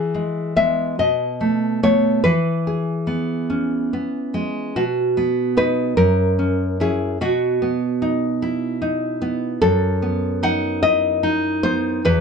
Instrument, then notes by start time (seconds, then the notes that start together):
nylon-string guitar
Already playing: E3 G#4
0.14 G#3
0.56 G#3 B3 E5
0.99 B2 D#5
1.41 A3
1.83 A3 B3 C#5
2.24 E3 B4
2.67 G#4
3.07 B3
3.50 C#4
3.93 B3
4.34 G#3
4.76 B2 F#4
5.17 B3
5.57 B3 D#4 B4
5.97 F#2 A#4
6.39 C#4
6.80 C#4 E4 G#4
7.21 B2 F#4
7.62 B3
8.02 D#4
8.42 E4
8.82 D#4
9.22 B3
9.62 F#2 A4
10.02 B3
10.43 D#4 F#5
10.83 E4 D#5
11.23 D#4
11.63 B3 C5
12.05 E2 B4